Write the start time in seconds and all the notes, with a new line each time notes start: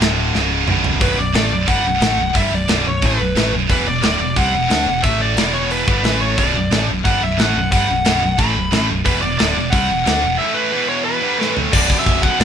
Already playing: D1 D2 A2 D3
0.01 snare, china
0.34 C#1 C#2 G#2 C#3, snare
0.68 B0 B1 F#2 B2, mid tom
0.84 floor tom
1.01 B0 B1 F#2 B2 B4, kick, open hi-hat
1.18 B0 B1 F#2 D5
1.34 A1 A2 E3 A3 D5, snare, open hi-hat
1.51 B0 B1 F#2
1.68 G1 G2 D3 G3 F#5, kick, open hi-hat
1.85 B0 B1 F#2
2.01 A1 A2 E3 A3, snare, open hi-hat
2.18 B0 B1 F#2
2.35 G1 G2 D3 G3 E5, kick, open hi-hat
2.52 B0 B1 F#2 D5
2.68 B0 B1 F#2 B2, snare, open hi-hat
2.85 B0 B1 F#2 C#5
3.02 A1 A2 E3 A3 B4, kick, open hi-hat
3.20 B0 B1 F#2
3.36 A1 A2 E3 A3, snare, open hi-hat
3.53 B0 B1 F#2
3.69 E1 E2 B2 E3 B4, kick, open hi-hat
3.86 E1 E2 B2 D5
4.03 D1 D2 A2 D3 D5, snare, open hi-hat
4.20 E1 E2 B2
4.36 C2 C3 G3 C4 F#5, kick, open hi-hat
4.54 E1 E2 B2
4.70 D2 D3 A3 D4, snare, open hi-hat
4.86 E1 E2 B2
5.03 A1 A2 E3 A3 E5, kick, open hi-hat
5.22 D5
5.36 E1 E2 B2 E3, snare, open hi-hat
5.54 C#5
5.71 B4, open hi-hat
5.87 G1 G2 D3 G3, kick
6.03 A1 A2 E3 A3, snare, open hi-hat
6.22 C#5
6.38 B0 B1 F#2 B2 D5, kick, open hi-hat
6.55 B0 B1 F#2
6.71 A1 A2 E3 A3, snare, open hi-hat
6.88 B0 B1 F#2
7.05 G1 G2 D3 G3 F#5, kick, open hi-hat
7.22 B0 B1 F#2 E5
7.38 A1 A2 E3 A3 F#5, snare, open hi-hat
7.54 B0 B1 F#2
7.72 G1 G2 D3 G3 F#5, kick, open hi-hat
7.89 B0 B1 F#2
8.05 B0 B1 F#2 B2, snare, open hi-hat
8.22 B0 B1 F#2
8.38 A1 A2 E3 A3 B5, kick, open hi-hat
8.55 B0 B1 F#2
8.72 A1 A2 E3 A3, snare, open hi-hat
8.89 B0 B1 F#2
9.05 E1 E2 B2 E3 B4, kick, open hi-hat
9.22 E1 E2 B2 D5
9.38 D1 D2 A2 D3 D5, snare, open hi-hat
9.55 E1 E2 B2
9.70 C2 C3 G3 C4 F#5, kick, open hi-hat
9.89 E1 E2 B2
10.06 D2 D3 A3 D4, snare, open hi-hat
10.23 E1 E2 B2
10.38 A2 E3 A3 E5
10.54 B4
10.73 E2 B2 E3
10.89 C#5
11.05 B4
11.23 G2 D3 G3
11.38 A2 E3 A3, snare
11.57 floor tom
11.72 B0 B1 F#2 B2 D5, kick, crash, china
11.90 kick
11.99 E5
12.06 B0, kick, china
12.23 B1 F#2 B2 F#5, kick
12.38 B0 B1 F#2 D5, snare, china